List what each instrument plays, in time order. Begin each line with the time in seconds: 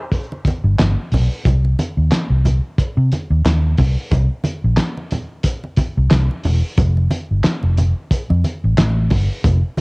0.12 kick, closed hi-hat, muted conga
0.32 muted conga
0.45 muted fingered electric bass stroke, kick, closed hi-hat, high conga
0.64 fingered electric bass G1
0.79 fingered electric bass G1, snare, clap, closed hi-hat, high conga
1.12 fingered electric bass B1, open hi-hat, low conga
1.45 fingered electric bass C2, kick, closed hi-hat, low conga
1.65 muted conga
1.79 closed hi-hat, high conga
1.97 fingered electric bass D#2
2.12 muted fingered electric bass stroke, snare, clap, closed hi-hat
2.30 fingered electric bass C2
2.45 closed hi-hat, high conga, low conga
2.78 muted fingered electric bass stroke, kick, closed hi-hat, muted conga
2.97 fingered electric bass C3
3.12 closed hi-hat, high conga
3.30 fingered electric bass D#2
3.45 fingered electric bass D#2, snare, clap, closed hi-hat, muted conga, high conga
3.77 fingered electric bass C2, kick, open hi-hat, low conga
4.11 fingered electric bass C2, kick, closed hi-hat, low conga
4.44 closed hi-hat, high conga
4.64 fingered electric bass A#1
4.77 snare, clap, closed hi-hat, muted conga
4.97 muted conga
5.11 closed hi-hat, high conga, low conga
5.43 kick, closed hi-hat, muted conga
5.64 muted conga
5.76 muted fingered electric bass stroke, kick, closed hi-hat, high conga
5.97 fingered electric bass C2
6.11 fingered electric bass C2, snare, clap, closed hi-hat, high conga
6.31 muted conga
6.43 fingered electric bass E1, open hi-hat, low conga
6.78 fingered electric bass F1, kick, closed hi-hat, muted conga, low conga
6.97 muted conga
7.11 closed hi-hat, high conga
7.31 fingered electric bass G1
7.44 muted fingered electric bass stroke, snare, clap, closed hi-hat
7.63 fingered electric bass F1, muted conga
7.77 closed hi-hat, high conga, low conga
8.11 muted fingered electric bass stroke, kick, closed hi-hat
8.30 fingered electric bass F2, muted conga
8.44 closed hi-hat, high conga
8.64 fingered electric bass A1
8.77 fingered electric bass A1, snare, clap, closed hi-hat, high conga
9.10 fingered electric bass G1, kick, open hi-hat, low conga
9.44 fingered electric bass F1, kick, closed hi-hat, muted conga, low conga
9.77 high conga